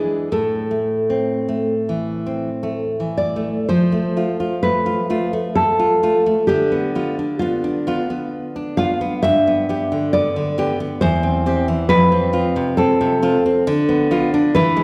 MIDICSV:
0, 0, Header, 1, 3, 480
1, 0, Start_track
1, 0, Tempo, 1153846
1, 131, Time_signature, 3, 2, 24, 8
1, 1092, Tempo, 1063830
1, 1572, Tempo, 924499
1, 4452, Tempo, 884956
1, 7489, End_track
2, 0, Start_track
2, 0, Title_t, "Nylon-string guitar"
2, 0, Program_c, 0, 24
2, 0, Note_on_c, 0, 68, 57
2, 114, Note_off_c, 0, 68, 0
2, 133, Note_on_c, 0, 69, 52
2, 1323, Note_off_c, 0, 69, 0
2, 1340, Note_on_c, 0, 74, 60
2, 1557, Note_off_c, 0, 74, 0
2, 1571, Note_on_c, 0, 72, 56
2, 2039, Note_off_c, 0, 72, 0
2, 2059, Note_on_c, 0, 71, 70
2, 2521, Note_off_c, 0, 71, 0
2, 2541, Note_on_c, 0, 69, 71
2, 3001, Note_off_c, 0, 69, 0
2, 3016, Note_on_c, 0, 67, 68
2, 3477, Note_off_c, 0, 67, 0
2, 3495, Note_on_c, 0, 65, 63
2, 3955, Note_off_c, 0, 65, 0
2, 4211, Note_on_c, 0, 77, 82
2, 4433, Note_off_c, 0, 77, 0
2, 4447, Note_on_c, 0, 76, 91
2, 4915, Note_off_c, 0, 76, 0
2, 4937, Note_on_c, 0, 74, 84
2, 5394, Note_off_c, 0, 74, 0
2, 5414, Note_on_c, 0, 72, 87
2, 5872, Note_off_c, 0, 72, 0
2, 5891, Note_on_c, 0, 71, 88
2, 6353, Note_off_c, 0, 71, 0
2, 6370, Note_on_c, 0, 69, 77
2, 6833, Note_off_c, 0, 69, 0
2, 7333, Note_on_c, 0, 71, 101
2, 7489, Note_off_c, 0, 71, 0
2, 7489, End_track
3, 0, Start_track
3, 0, Title_t, "Nylon-string guitar"
3, 0, Program_c, 1, 24
3, 0, Note_on_c, 1, 52, 49
3, 0, Note_on_c, 1, 56, 32
3, 0, Note_on_c, 1, 62, 35
3, 116, Note_off_c, 1, 56, 0
3, 117, Note_off_c, 1, 62, 0
3, 120, Note_off_c, 1, 52, 0
3, 133, Note_on_c, 1, 45, 46
3, 295, Note_on_c, 1, 57, 32
3, 457, Note_on_c, 1, 60, 31
3, 557, Note_off_c, 1, 57, 0
3, 618, Note_on_c, 1, 57, 35
3, 719, Note_off_c, 1, 60, 0
3, 786, Note_on_c, 1, 52, 29
3, 877, Note_off_c, 1, 57, 0
3, 942, Note_on_c, 1, 60, 35
3, 1034, Note_off_c, 1, 52, 0
3, 1094, Note_on_c, 1, 57, 38
3, 1191, Note_off_c, 1, 60, 0
3, 1261, Note_on_c, 1, 52, 33
3, 1357, Note_off_c, 1, 57, 0
3, 1424, Note_on_c, 1, 57, 33
3, 1516, Note_off_c, 1, 52, 0
3, 1555, Note_off_c, 1, 45, 0
3, 1574, Note_off_c, 1, 57, 0
3, 1574, Note_on_c, 1, 53, 50
3, 1693, Note_on_c, 1, 57, 39
3, 1813, Note_off_c, 1, 57, 0
3, 1819, Note_on_c, 1, 57, 35
3, 1822, Note_on_c, 1, 65, 37
3, 1929, Note_off_c, 1, 57, 0
3, 1929, Note_off_c, 1, 65, 0
3, 1941, Note_on_c, 1, 65, 38
3, 2061, Note_on_c, 1, 57, 42
3, 2133, Note_off_c, 1, 65, 0
3, 2180, Note_on_c, 1, 65, 38
3, 2253, Note_off_c, 1, 57, 0
3, 2300, Note_off_c, 1, 65, 0
3, 2304, Note_on_c, 1, 57, 42
3, 2307, Note_on_c, 1, 65, 46
3, 2412, Note_off_c, 1, 57, 0
3, 2413, Note_off_c, 1, 65, 0
3, 2424, Note_on_c, 1, 57, 39
3, 2665, Note_on_c, 1, 65, 42
3, 2781, Note_off_c, 1, 57, 0
3, 2783, Note_off_c, 1, 65, 0
3, 2787, Note_on_c, 1, 57, 41
3, 2790, Note_on_c, 1, 65, 48
3, 2893, Note_off_c, 1, 57, 0
3, 2895, Note_off_c, 1, 65, 0
3, 2909, Note_on_c, 1, 57, 45
3, 3003, Note_off_c, 1, 53, 0
3, 3025, Note_on_c, 1, 50, 56
3, 3026, Note_off_c, 1, 57, 0
3, 3144, Note_on_c, 1, 59, 40
3, 3261, Note_off_c, 1, 59, 0
3, 3267, Note_on_c, 1, 59, 37
3, 3270, Note_on_c, 1, 65, 42
3, 3372, Note_off_c, 1, 59, 0
3, 3374, Note_off_c, 1, 65, 0
3, 3389, Note_on_c, 1, 62, 41
3, 3508, Note_on_c, 1, 59, 46
3, 3576, Note_off_c, 1, 62, 0
3, 3623, Note_on_c, 1, 62, 43
3, 3696, Note_off_c, 1, 59, 0
3, 3742, Note_on_c, 1, 59, 48
3, 3746, Note_on_c, 1, 65, 51
3, 3814, Note_off_c, 1, 62, 0
3, 3849, Note_off_c, 1, 59, 0
3, 3851, Note_off_c, 1, 65, 0
3, 3863, Note_on_c, 1, 59, 43
3, 4100, Note_on_c, 1, 62, 44
3, 4211, Note_off_c, 1, 59, 0
3, 4217, Note_on_c, 1, 59, 48
3, 4220, Note_on_c, 1, 65, 48
3, 4287, Note_off_c, 1, 62, 0
3, 4322, Note_off_c, 1, 59, 0
3, 4324, Note_off_c, 1, 65, 0
3, 4335, Note_on_c, 1, 59, 50
3, 4431, Note_off_c, 1, 50, 0
3, 4452, Note_off_c, 1, 59, 0
3, 4456, Note_on_c, 1, 43, 64
3, 4581, Note_on_c, 1, 59, 45
3, 4693, Note_off_c, 1, 59, 0
3, 4699, Note_on_c, 1, 59, 42
3, 4703, Note_on_c, 1, 67, 45
3, 4808, Note_off_c, 1, 59, 0
3, 4809, Note_off_c, 1, 67, 0
3, 4822, Note_on_c, 1, 50, 50
3, 4942, Note_on_c, 1, 59, 50
3, 5012, Note_off_c, 1, 50, 0
3, 5063, Note_on_c, 1, 50, 46
3, 5132, Note_off_c, 1, 59, 0
3, 5180, Note_on_c, 1, 59, 52
3, 5184, Note_on_c, 1, 67, 58
3, 5252, Note_off_c, 1, 50, 0
3, 5287, Note_off_c, 1, 59, 0
3, 5289, Note_off_c, 1, 67, 0
3, 5301, Note_on_c, 1, 59, 48
3, 5398, Note_off_c, 1, 43, 0
3, 5419, Note_off_c, 1, 59, 0
3, 5420, Note_on_c, 1, 40, 68
3, 5535, Note_on_c, 1, 60, 48
3, 5652, Note_off_c, 1, 60, 0
3, 5659, Note_on_c, 1, 60, 50
3, 5662, Note_on_c, 1, 67, 58
3, 5765, Note_off_c, 1, 60, 0
3, 5767, Note_off_c, 1, 67, 0
3, 5778, Note_on_c, 1, 52, 54
3, 5883, Note_off_c, 1, 40, 0
3, 5895, Note_on_c, 1, 41, 66
3, 5897, Note_off_c, 1, 52, 0
3, 6016, Note_on_c, 1, 60, 54
3, 6122, Note_off_c, 1, 60, 0
3, 6129, Note_on_c, 1, 60, 46
3, 6132, Note_on_c, 1, 65, 50
3, 6240, Note_off_c, 1, 60, 0
3, 6242, Note_off_c, 1, 65, 0
3, 6255, Note_on_c, 1, 48, 51
3, 6375, Note_on_c, 1, 60, 56
3, 6449, Note_off_c, 1, 48, 0
3, 6497, Note_on_c, 1, 48, 54
3, 6568, Note_off_c, 1, 60, 0
3, 6616, Note_on_c, 1, 60, 60
3, 6618, Note_on_c, 1, 65, 60
3, 6690, Note_off_c, 1, 48, 0
3, 6725, Note_off_c, 1, 60, 0
3, 6726, Note_off_c, 1, 65, 0
3, 6742, Note_on_c, 1, 60, 51
3, 6836, Note_off_c, 1, 41, 0
3, 6858, Note_on_c, 1, 50, 82
3, 6860, Note_off_c, 1, 60, 0
3, 6975, Note_on_c, 1, 59, 56
3, 7089, Note_off_c, 1, 59, 0
3, 7095, Note_on_c, 1, 59, 57
3, 7098, Note_on_c, 1, 65, 62
3, 7203, Note_off_c, 1, 59, 0
3, 7204, Note_off_c, 1, 65, 0
3, 7219, Note_on_c, 1, 62, 62
3, 7320, Note_off_c, 1, 50, 0
3, 7336, Note_off_c, 1, 62, 0
3, 7338, Note_on_c, 1, 52, 72
3, 7452, Note_on_c, 1, 56, 58
3, 7489, Note_off_c, 1, 52, 0
3, 7489, Note_off_c, 1, 56, 0
3, 7489, End_track
0, 0, End_of_file